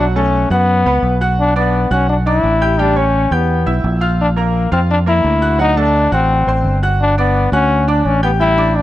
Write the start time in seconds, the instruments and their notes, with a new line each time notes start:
Already playing: fingered electric bass B1, grand piano F#3 F#4 F#5
0.16 grand piano A3 A4 A5, trombone C#4
0.50 fingered electric bass F#2, trombone B3, grand piano F#4 F#5 F#6
0.85 fingered electric bass C#2, grand piano B3 B4 B5
1.02 fingered electric bass B1
1.21 grand piano F#4 F#5 F#6
1.39 trombone D4
1.56 trombone B3, grand piano D4 D5 D6
1.91 fingered electric bass B1, trombone C#4, grand piano F#4 F#5 F#6
2.10 trombone D4
2.26 grand piano D4 D5 D6, trombone E4
2.43 fingered electric bass A1
2.61 grand piano G4 G5 G6
2.78 grand piano G3 G4 G5, trombone D4
2.96 grand piano C#4 C#5 C#6, trombone C#4
3.31 fingered electric bass E2, trombone B3, grand piano G4 G5 G6
3.66 fingered electric bass B1, grand piano E4 E5 E6
3.84 fingered electric bass A#1
4.01 grand piano F4 F5 F6
4.21 trombone D4
4.36 grand piano A#3 A#4 A#5, trombone A#3
4.71 fingered electric bass F2, trombone C4, grand piano F4 F5 F6
4.91 trombone D4
5.06 grand piano A#3 A#4 A#5, trombone E4
5.24 fingered electric bass D2
5.42 grand piano F#4 F#5 F#6
5.58 grand piano F#3 F#4 F#5, trombone D#4
5.77 grand piano A3 A4 A5, trombone D4
6.12 fingered electric bass A1, trombone C4, grand piano F#4 F#5 F#6
6.47 fingered electric bass A1, grand piano C4 C5 C6
6.64 fingered electric bass G1
6.83 grand piano F#4 F#5 F#6
7.01 trombone D4
7.18 trombone B3, grand piano D4 D5 D6
7.52 fingered electric bass D2, trombone C#4, grand piano F#4 F#5 F#6
7.88 grand piano D4 D5 D6, trombone D4
8.05 fingered electric bass A1, trombone C#4
8.23 trombone B3, grand piano G4 G5 G6
8.40 grand piano G3 G4 G5, trombone E4
8.58 grand piano D4 D5 D6
8.76 trombone D4